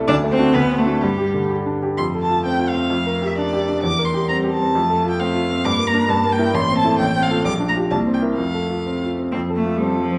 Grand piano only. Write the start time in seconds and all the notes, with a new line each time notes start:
Already playing: C2 C3 E4 A4
0.09 D2
0.24 A3
0.39 D4 F#4
0.55 D2
0.70 C4
0.85 D4 F#4
1.02 G2
1.18 G4
1.34 D3
1.51 G4
1.66 D4
1.83 G4
1.98 F2
2.14 A4
2.29 F4
2.45 C4
2.59 F4
2.74 C4
2.90 F2
3.06 A#4
3.22 G4
3.38 D4
3.53 G4
3.69 D4
3.83 E2
3.99 A#4
4.14 G4
4.29 C4
4.44 G4
4.60 C4
4.75 F2
4.90 A4
5.04 F4
5.20 C4
5.35 F4
5.51 C4
5.65 G2
5.79 A#3
5.94 D4 A#4
6.09 G2
6.25 A#3
6.39 E4 A#4
6.54 A1
6.70 C4
6.85 E4 A4
7.00 A1
7.15 C4
7.31 F4 A4
7.45 A#1
7.60 D4
7.76 F4 G4
7.91 C2
8.06 C4
8.22 E4 A#4
8.38 F2
8.54 A4
8.70 F4
8.86 C4
9.03 F4
9.19 C4
9.35 F2
9.50 A4
9.65 F4
9.80 C4
9.96 F4
10.11 C4